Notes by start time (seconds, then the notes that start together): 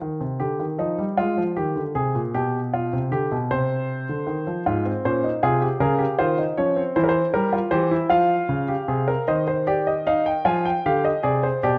0.02 D#3
0.21 C3
0.40 D3 G4
0.60 D#3
0.78 F3 D#4
0.98 G3
1.17 G#3 F4
1.37 F3
1.56 D#3 G4
1.76 D3
1.95 C3 G#4
2.15 A#2
2.34 B2 G4
2.74 F4
2.93 C3
3.11 D3 G4
3.32 B2
3.51 C3 C5
4.09 D3
4.27 D#3
4.47 F3
4.66 G#2 F4
4.86 C4
5.05 A#2 C#4 C5
5.24 D#4
5.43 C3 F4 G#4
5.61 G4
5.80 C#3 G#4 A#4
5.99 G4
6.19 D#3 F4 C5
6.39 D#4
6.58 F3 C#4 C#5
6.76 C4
6.96 E3 E4 C5
7.04 A#4
7.09 C5
7.34 G3 A#4
7.53 F4
7.71 E3 G4 C5
7.91 E4
8.10 F3 F4 F5
8.49 C#3
8.68 G4
8.88 C3 G#4
9.08 A#4
9.28 D#3 C5 D#5
9.48 C5
9.67 G4 D5
9.87 D#5
10.07 D#4 F5
10.26 G5
10.45 F3 F4 G#5
10.65 G5
10.86 D3 G4 F5
11.05 D#5
11.23 C3 G#4 D5
11.43 C5
11.63 B2 G4 D5